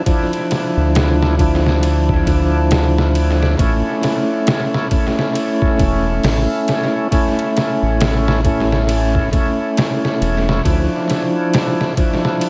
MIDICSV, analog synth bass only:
0, 0, Header, 1, 2, 480
1, 0, Start_track
1, 0, Key_signature, -1, "minor"
1, 0, Tempo, 882353
1, 34, Time_signature, 4, 2, 24, 8
1, 6796, End_track
2, 0, Start_track
2, 0, Title_t, "Analog synth bass"
2, 0, Program_c, 0, 38
2, 418, Note_on_c, 0, 38, 94
2, 1216, Note_off_c, 0, 38, 0
2, 1233, Note_on_c, 0, 38, 94
2, 1935, Note_off_c, 0, 38, 0
2, 1954, Note_on_c, 0, 33, 98
2, 2080, Note_off_c, 0, 33, 0
2, 3153, Note_on_c, 0, 28, 83
2, 3370, Note_off_c, 0, 28, 0
2, 3393, Note_on_c, 0, 33, 103
2, 3520, Note_off_c, 0, 33, 0
2, 4256, Note_on_c, 0, 33, 93
2, 5055, Note_off_c, 0, 33, 0
2, 5555, Note_on_c, 0, 28, 87
2, 5772, Note_off_c, 0, 28, 0
2, 5795, Note_on_c, 0, 38, 98
2, 5921, Note_off_c, 0, 38, 0
2, 6796, End_track
0, 0, End_of_file